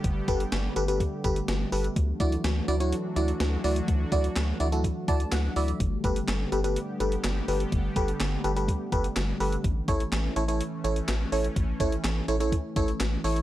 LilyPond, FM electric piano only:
\new Staff \with { instrumentName = "FM electric piano" } { \time 4/4 \key g \lydian \tempo 4 = 125 << { r1 | r1 | r2 r8 a''8 fis''8 e''8 | r1 |
r1 | r1 | r1 | } \\ { r8 <g' a' b'>16 r8. <g' a' b'>16 <g' a' b'>16 r8 <g' a' b'>16 r8. <g' a' b'>16 r16 | r8 <e' fis' d''>16 r8. <e' fis' d''>16 <e' fis' cis''>16 r8 <e' fis' d''>16 r8. <e' fis' d''>16 r16 | r8 <e' fis' d''>16 r8. <e' fis' d''>16 <e' fis' a'>16 r8 <e' fis' d''>16 r8. <e' fis' d''>16 r16 | r8 <g' a' b'>16 r8. <g' a' b'>16 <g' a' b'>16 r8 <g' a' b'>16 r8. <g' a' b'>16 r16 |
r8 <g' a' b'>16 r8. <g' a' b'>16 <g' a' b'>16 r8 <g' a' b'>16 r8. <g' a' b'>16 r16 | r8 <e' a' cis''>16 r8. <e' a' cis''>16 <e' a' cis''>16 r8 <e' a' cis''>16 r8. <e' a' cis''>16 r16 | r8 <e' a' cis''>16 r8. <e' a' cis''>16 <e' a' cis''>16 r8 <e' a' cis''>16 r8. <e' a' cis''>16 r16 | } >> }